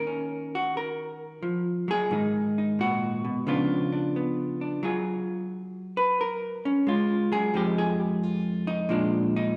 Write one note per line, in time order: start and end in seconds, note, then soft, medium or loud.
0.00 1.42 D#3 medium
0.00 2.08 A#3 soft
0.00 0.53 A#4 medium
0.07 2.08 C#4 soft
0.55 0.76 F#4 medium
0.77 1.89 A#4 medium
1.43 1.88 F3 medium
1.88 2.11 F#3 medium
1.88 2.80 G#4 medium
2.11 3.44 G#2 medium
2.11 3.47 D#3 soft
2.11 2.57 D#4 soft
2.58 3.45 D#4 soft
2.79 3.24 A#2 soft
2.79 3.48 F#4 medium
3.25 3.46 B2 medium
3.47 4.80 C#3 medium
3.47 4.80 F3 soft
3.47 4.15 B3 soft
3.47 3.91 D4 soft
3.47 4.83 F4 medium
3.92 4.60 D4 soft
4.16 4.81 B3 soft
4.61 4.80 D4 soft
4.83 6.86 F#3 medium
4.83 6.87 F4 soft
4.83 5.97 G#4 medium
5.97 6.19 B4 medium
6.21 6.65 A#4 medium
6.65 6.87 C#4 medium
6.87 7.31 G#3 medium
6.87 7.32 F4 medium
7.32 7.54 F#3 medium
7.32 7.54 G#4 loud
7.54 8.89 F2 medium
7.54 8.87 F3 soft
7.54 8.89 G#3 soft
7.54 8.66 D#4 soft
7.54 7.77 G4 medium
7.78 8.00 G#4 medium
8.00 8.23 G4 medium
8.23 8.68 F4 medium
8.67 8.89 D#4 medium
8.89 9.55 A#2 medium
8.89 9.56 F3 soft
8.89 9.56 G#3 soft
8.89 9.35 D4 medium
9.36 9.56 D#4 medium